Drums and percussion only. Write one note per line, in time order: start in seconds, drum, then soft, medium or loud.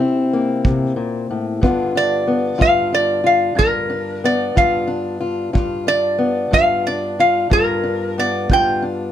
0.65 kick medium
1.63 kick medium
2.61 kick medium
3.59 kick medium
4.57 kick medium
5.55 kick medium
6.53 kick medium
7.52 kick medium
8.50 kick medium